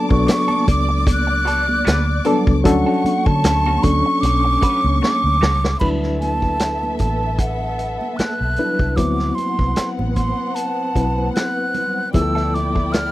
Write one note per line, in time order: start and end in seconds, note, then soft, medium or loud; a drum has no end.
0.00 0.10 F#3 medium
0.00 0.11 B3 medium
0.00 0.11 D4 medium
0.00 0.12 A4 loud
0.00 2.61 D5 medium
0.00 2.61 D6 medium
0.09 0.25 B1 medium
0.09 1.46 F#3 medium
0.09 1.46 B3 medium
0.09 1.46 D4 medium
0.09 1.46 A4 medium
0.09 0.27 C#6 medium
0.09 muted clean electric guitar stroke soft
0.09 kick medium
0.27 muted clean electric guitar stroke soft
0.27 snare loud
0.27 closed hi-hat loud
0.27 muted conga soft
0.31 0.66 C#6 loud
0.48 0.66 F#3 medium
0.48 0.67 B3 medium
0.48 0.67 D4 medium
0.48 0.67 A4 medium
0.48 high conga medium
0.67 1.82 C#2 medium
0.67 1.06 D6 medium
0.67 muted clean electric guitar stroke soft
0.67 kick medium
0.67 closed hi-hat medium
0.67 muted conga soft
0.67 high conga medium
0.89 muted clean electric guitar stroke soft
1.07 muted clean electric guitar stroke soft
1.07 kick medium
1.07 closed hi-hat medium
1.07 muted conga soft
1.07 high conga soft
1.12 2.24 F#6 loud
1.27 muted clean electric guitar stroke soft
1.45 1.69 F#3 medium
1.45 1.68 B3 medium
1.45 1.67 D4 medium
1.45 1.67 A4 medium
1.45 closed hi-hat medium
1.45 muted conga soft
1.68 muted clean electric guitar stroke soft
1.68 high conga medium
1.85 2.19 D2 medium
1.85 2.08 F#3 medium
1.85 2.07 B3 medium
1.85 2.06 D4 medium
1.85 2.06 B4 medium
1.85 snare loud
1.85 closed hi-hat medium
1.85 muted conga soft
1.85 high conga medium
2.07 muted clean electric guitar stroke soft
2.25 2.43 F#3 medium
2.25 2.60 F#3 medium
2.25 2.60 B3 medium
2.25 2.44 B3 medium
2.25 2.60 D4 medium
2.25 2.44 D4 medium
2.25 2.60 A4 loud
2.25 2.44 A4 medium
2.25 closed hi-hat medium
2.25 muted conga soft
2.25 low conga medium
2.47 2.62 C#2 medium
2.47 kick medium
2.64 2.83 D2 medium
2.64 3.69 F#3 loud
2.64 3.69 C#4 medium
2.64 5.78 C#4 medium
2.64 3.69 D4 medium
2.64 3.69 A4 loud
2.64 3.27 F#5 medium
2.64 5.78 C#6 medium
2.64 muted clean electric guitar stroke soft
2.64 kick loud
2.64 closed hi-hat medium
2.64 muted conga soft
2.64 low conga medium
2.86 3.04 A3 medium
2.86 3.04 C#4 medium
2.86 3.05 F#4 medium
2.86 3.05 A4 medium
3.04 muted fingered electric bass stroke soft
3.04 closed hi-hat medium
3.04 muted conga soft
3.04 high conga medium
3.26 3.41 D3 medium
3.26 3.84 A5 medium
3.26 muted clean electric guitar stroke soft
3.26 kick medium
3.44 3.77 D2 medium
3.44 muted clean electric guitar stroke soft
3.44 snare loud
3.44 closed hi-hat loud
3.66 3.84 A3 medium
3.66 3.85 C#4 medium
3.66 3.85 F#4 medium
3.66 3.85 A4 medium
3.66 high conga medium
3.83 4.01 D2 loud
3.83 5.22 F#3 medium
3.83 5.22 C#4 medium
3.83 5.22 D4 medium
3.83 5.22 A4 medium
3.83 4.22 C#6 medium
3.83 muted clean electric guitar stroke soft
3.83 kick medium
3.83 closed hi-hat medium
3.83 high conga medium
4.06 muted clean electric guitar stroke soft
4.21 4.56 B1 medium
4.21 5.01 D6 loud
4.21 muted clean electric guitar stroke soft
4.21 closed hi-hat loud
4.21 muted conga soft
4.21 high conga soft
4.45 muted clean electric guitar stroke soft
4.61 4.85 A3 medium
4.61 4.83 C#4 medium
4.61 4.82 F#4 medium
4.61 4.82 B4 medium
4.61 kick medium
4.61 closed hi-hat medium
4.82 4.99 C#2 medium
4.82 muted clean electric guitar stroke soft
4.82 high conga medium
5.02 5.77 D6 loud
5.02 muted clean electric guitar stroke soft
5.02 snare medium
5.02 muted conga soft
5.02 high conga medium
5.24 5.39 D2 medium
5.41 5.74 C#2 loud
5.41 5.60 A3 soft
5.41 5.60 C#4 medium
5.41 5.60 F#4 medium
5.41 5.61 A4 medium
5.41 snare medium
5.41 low conga medium
5.63 muted clean electric guitar stroke soft
5.63 snare medium
5.80 6.96 D2 medium
5.80 7.20 F#3 medium
5.80 8.94 B3 medium
5.80 7.20 D4 medium
5.80 7.20 E4 medium
5.80 8.94 A4 medium
5.80 7.20 B4 medium
5.80 8.94 E5 medium
5.80 5.89 B5 medium
5.80 kick medium
5.80 crash medium
5.80 muted conga soft
5.80 low conga medium
6.03 snare soft
6.20 6.96 A5 medium
6.20 closed hi-hat medium
6.20 muted conga soft
6.20 high conga medium
6.42 kick medium
6.59 snare medium
6.59 closed hi-hat medium
6.83 high conga medium
6.99 7.97 A1 medium
6.99 7.41 A5 medium
6.99 kick medium
6.99 closed hi-hat medium
6.99 high conga medium
7.38 8.18 F#5 medium
7.38 kick medium
7.38 closed hi-hat medium
7.79 closed hi-hat medium
8.01 high conga medium
8.17 8.98 F#6 medium
8.17 muted fingered electric bass stroke soft
8.17 snare loud
8.17 closed hi-hat medium
8.17 high conga medium
8.41 8.56 B1 medium
8.56 8.93 F#3 medium
8.56 8.93 D4 medium
8.56 8.94 E4 medium
8.56 8.94 B4 medium
8.56 closed hi-hat medium
8.56 muted conga soft
8.56 low conga medium
8.79 8.95 C2 medium
8.79 kick medium
8.96 9.30 D2 medium
8.96 10.36 F#3 medium
8.96 12.11 B3 medium
8.96 10.37 B3 medium
8.96 10.36 C4 medium
8.96 12.11 C4 medium
8.96 10.37 E4 medium
8.96 12.11 F#5 medium
8.96 9.36 D6 medium
8.96 kick medium
8.96 closed hi-hat medium
8.96 muted conga soft
8.96 low conga medium
9.19 snare soft
9.35 9.89 C6 medium
9.35 closed hi-hat medium
9.35 high conga medium
9.59 9.74 C2 medium
9.59 kick medium
9.76 muted fingered electric bass stroke soft
9.76 snare medium
9.76 closed hi-hat medium
9.99 10.32 A1 medium
9.99 high conga medium
10.15 10.56 C6 medium
10.15 kick medium
10.15 closed hi-hat medium
10.15 muted conga soft
10.15 high conga medium
10.55 11.33 A5 medium
10.55 closed hi-hat medium
10.95 11.28 B1 medium
10.95 12.00 F#3 medium
10.95 12.00 C4 medium
10.95 12.00 E4 medium
10.95 12.00 B4 medium
10.95 kick medium
10.95 closed hi-hat medium
11.18 high conga medium
11.33 12.10 F#6 medium
11.33 snare medium
11.33 closed hi-hat medium
11.33 muted conga soft
11.33 high conga medium
11.74 closed hi-hat medium
11.74 muted conga soft
11.74 low conga medium
12.14 13.12 D2 medium
12.14 13.12 F3 medium
12.14 13.12 B3 medium
12.14 13.12 E4 medium
12.14 12.22 G#4 medium
12.14 13.12 D5 medium
12.14 13.12 G5 medium
12.14 12.56 E6 medium
12.14 muted clean electric guitar stroke soft
12.14 kick loud
12.14 closed hi-hat medium
12.14 muted conga soft
12.14 low conga medium
12.22 13.12 A4 loud
12.35 12.53 F3 soft
12.35 12.54 B3 medium
12.35 12.54 E4 medium
12.35 12.54 A4 medium
12.35 snare soft
12.54 12.94 D6 medium
12.54 muted clean electric guitar stroke soft
12.54 closed hi-hat medium
12.54 high conga medium
12.75 muted clean electric guitar stroke soft
12.75 kick medium
12.92 13.12 F6 loud
12.92 muted clean electric guitar stroke soft
12.92 snare loud
12.92 closed hi-hat medium
12.92 muted conga soft